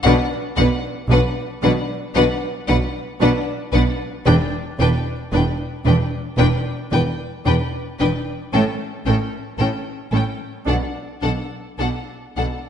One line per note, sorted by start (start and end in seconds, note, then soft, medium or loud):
0.04 0.12 B1 loud
0.04 0.13 B2 loud
0.04 0.13 D4 medium
0.04 0.14 B4 medium
0.04 0.12 F#5 loud
0.56 0.65 B1 medium
0.56 0.65 B2 medium
0.56 0.65 D4 medium
0.56 0.68 B4 medium
0.56 0.64 F#5 medium
1.09 1.18 B1 loud
1.09 1.18 B2 medium
1.09 1.17 D4 medium
1.09 1.20 B4 medium
1.09 1.19 F#5 medium
1.62 1.70 B1 loud
1.62 1.71 B2 medium
1.62 1.70 D4 medium
1.62 1.72 B4 medium
1.62 1.71 F#5 medium
2.14 2.23 B1 medium
2.14 2.24 B2 medium
2.14 2.22 D4 medium
2.14 2.24 B4 medium
2.14 2.23 F#5 medium
2.68 2.76 B1 loud
2.68 2.76 B2 medium
2.68 2.76 D4 medium
2.68 2.76 B4 medium
2.68 2.76 F#5 medium
3.21 3.29 B1 medium
3.21 3.29 B2 medium
3.21 3.29 D4 medium
3.21 3.30 B4 medium
3.21 3.29 F#5 medium
3.72 3.81 B1 medium
3.72 3.81 B2 medium
3.72 3.82 D4 medium
3.72 3.80 B4 medium
3.72 3.81 F#5 medium
4.25 4.34 E1 loud
4.25 4.35 E2 loud
4.25 4.34 D4 loud
4.25 4.33 B4 medium
4.25 4.34 G5 medium
4.80 4.88 E1 medium
4.80 4.88 E2 medium
4.80 4.88 D4 medium
4.80 4.88 B4 medium
4.80 4.88 G5 medium
5.32 5.41 E1 medium
5.32 5.42 E2 medium
5.32 5.40 D4 medium
5.32 5.41 B4 medium
5.32 5.43 G5 medium
5.86 5.94 E1 medium
5.86 5.95 E2 medium
5.86 5.94 D4 medium
5.86 5.94 B4 medium
5.86 5.95 G5 medium
6.38 6.46 E1 loud
6.38 6.47 E2 medium
6.38 6.47 D4 medium
6.38 6.46 B4 medium
6.38 6.46 G5 medium
6.91 7.00 E1 medium
6.91 7.01 E2 medium
6.91 6.99 D4 medium
6.91 7.00 B4 medium
6.91 7.01 G5 medium
7.45 7.54 E1 medium
7.45 7.55 E2 medium
7.45 7.53 D4 medium
7.45 7.54 B4 medium
7.45 7.54 G5 medium
7.99 8.08 E1 medium
7.99 8.10 E2 medium
7.99 8.07 D4 medium
7.99 8.08 B4 medium
7.99 8.08 G5 medium
8.53 8.62 A1 medium
8.53 8.62 A2 medium
8.53 8.61 C#4 medium
8.53 8.62 A4 medium
8.53 8.63 G5 medium
9.06 9.14 A1 medium
9.06 9.15 A2 medium
9.06 9.14 C#4 medium
9.06 9.15 A4 medium
9.06 9.15 G5 medium
9.58 9.66 A1 medium
9.58 9.68 A2 medium
9.58 9.67 C#4 medium
9.58 9.67 A4 medium
9.58 9.67 G5 medium
10.12 10.20 A1 medium
10.12 10.21 A2 medium
10.12 10.20 C#4 medium
10.12 10.20 A4 medium
10.12 10.23 G5 medium
10.66 10.75 B1 medium
10.66 10.76 B2 medium
10.66 10.74 D4 medium
10.66 10.75 A4 medium
10.66 10.76 F#5 medium
11.22 11.31 B1 medium
11.22 11.31 B2 medium
11.22 11.30 D4 medium
11.22 11.30 A4 medium
11.22 11.30 F#5 medium
11.78 11.87 B1 medium
11.78 11.88 B2 medium
11.78 11.87 D4 medium
11.78 11.86 A4 medium
11.78 11.88 F#5 medium
12.37 12.45 B1 medium
12.37 12.46 B2 medium
12.37 12.45 D4 soft
12.37 12.45 A4 medium
12.37 12.45 F#5 medium